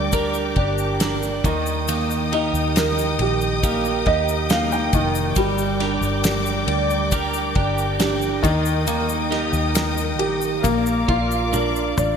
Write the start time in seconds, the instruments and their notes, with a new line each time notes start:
Already playing: fingered electric bass D2, grand piano G3 D4 A#4 D5, clean electric guitar G3 D4 G4 A#4, string section A#4 D5 G5 D6
0.12 clean electric guitar D4 G4 A#4, grand piano A#4, kick, ride, shaker
0.34 shaker
0.56 fingered electric bass G1, grand piano D4, clean electric guitar G4, kick, ride
0.78 shaker
1.00 clean electric guitar D4, grand piano A#4, snare, ride, shaker
1.23 shaker
1.44 fingered electric bass D#2, clean electric guitar D#3, grand piano D#3, string section D#5 G5 D#6, kick, ride, shaker
1.66 shaker
1.88 clean electric guitar D#3, grand piano A#3, ride, shaker
2.10 shaker
2.32 clean electric guitar D#4 G4 A#4, grand piano D#4, ride
2.53 fingered electric bass D#2, shaker
2.76 grand piano A#4, snare, ride, shaker
2.98 shaker
3.19 fingered electric bass A#1, grand piano G4, ride
3.41 shaker
3.63 grand piano A#3, clean electric guitar D#4 G4 A#4, kick, ride, shaker
3.85 shaker
4.06 fingered electric bass D#2, grand piano D#4 D#5, clean electric guitar G4, kick, ride
4.28 shaker
4.50 grand piano A#3 F5, clean electric guitar D#4, snare, ride, shaker
4.72 grand piano G5, shaker
4.93 fingered electric bass F1, grand piano D#3, kick, ride, shaker
5.15 shaker
5.35 fingered electric bass G1, clean electric guitar G3, grand piano G3, string section A#4 D5 D6, kick, ride, shaker
5.58 shaker
5.80 clean electric guitar D4 G4 A#4, grand piano D4, snare, ride
6.01 fingered electric bass G1, shaker
6.24 grand piano G4, snare, ride, shaker
6.46 shaker
6.67 fingered electric bass D2, grand piano D5, ride
6.90 shaker
7.12 clean electric guitar D4 G4 A#4, grand piano A#4, kick, ride, shaker
7.34 shaker
7.55 fingered electric bass G1, grand piano D4, clean electric guitar G4, kick, ride
7.78 shaker
8.00 clean electric guitar D4, grand piano G4, snare, ride, shaker
8.22 shaker
8.43 fingered electric bass D#2, grand piano D#3, clean electric guitar D#3, string section D#5 D#6, kick, ride, shaker
8.65 shaker
8.87 clean electric guitar D#3, grand piano A#3, ride, shaker
9.09 shaker
9.31 clean electric guitar D#4 G4 A#4, grand piano D#4, snare, ride
9.53 fingered electric bass D#2, shaker
9.75 grand piano A#4, snare, ride, shaker
9.97 shaker
10.18 fingered electric bass A#1, grand piano G4, ride
10.41 shaker
10.63 fingered electric bass A#1, grand piano A#3, string section D5 F5 D6, kick, ride, shaker
10.86 shaker
11.08 fingered electric bass A#1, clean electric guitar F4, grand piano F4, kick, ride
11.31 shaker
11.53 clean electric guitar D4, grand piano A#4, high tom, shaker
11.76 shaker
11.98 fingered electric bass A1, grand piano D5, mid tom, shaker